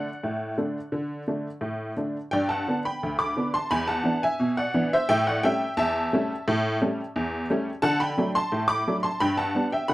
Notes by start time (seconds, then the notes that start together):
Already playing: D5 F#5
0.23 A2
0.58 D3 A3 D4
0.92 D3
1.28 D3 A3 D4
1.61 A2
1.97 D3 A3 D4
2.31 G2 D5 G5
2.49 F#5 A5
2.68 D3 B3 D4
2.85 G5 B5
3.03 D2
3.19 B5 D6
3.37 D3 B3 D4
3.54 A5 C6
3.71 E2 G#5 B5
3.88 F#5 A5
4.04 E3 B3 D4
4.23 E5 G#5
4.40 B2
4.57 D5 F#5
4.74 E3 B3 D4
4.93 C5 E5
5.09 A2 E5 G5
5.27 D5 F#5
5.43 G3 A3 C#4 E5 G5
5.77 E2 E5 A5
6.13 G3 A3 C#4
6.48 A2
6.82 G3 A3 C#4
7.16 E2
7.50 G3 A3 C#4
7.82 D3 F#5 A5
8.00 G5 B5
8.17 F#3 A3 D4
8.35 A5 C6
8.52 A2
8.68 B5 D6
8.87 F#3 A3 D4
9.03 A5 C6
9.20 G2 G5 B5
9.37 F#5 A5
9.55 G3 B3 D4
9.72 E5 G5
9.88 D3 F#5 B5